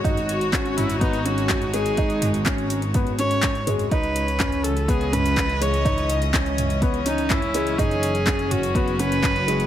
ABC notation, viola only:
X:1
M:4/4
L:1/8
Q:1/4=124
K:C#m
V:1 name="Viola"
F3 E D F2 G- | G z4 c2 z | B3 A G B2 c- | c z4 D E2 |
G3 F2 B3 |]